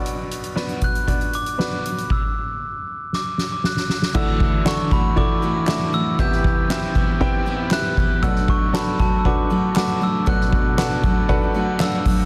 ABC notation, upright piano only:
X:1
M:4/4
L:1/8
Q:1/4=118
K:Bm
V:1 name="Upright piano"
[B,DFd] z [B,DFB] z [B,DFd] z [B,DFB] z | z8 | [DEFAe] z [DEFAf] z [DEFAd] z [DEFAe] z | [B,EGBe] z [=CEGBe] z [CEGBg] z [CEGBe] z |
[DFABf] z [DFABa] z [DFABf] z [DFABf] z | [DFABf] z [DFABf] z [DFABf] z [DFAB=f^f] z |]
V:2 name="Upright piano" clef=bass
[B,,,B,,]6- [B,,,B,,] z | z8 | [D,,D,]8 | [=C,,=C,]8 |
[B,,,B,,]8 | [B,,,B,,]8 |]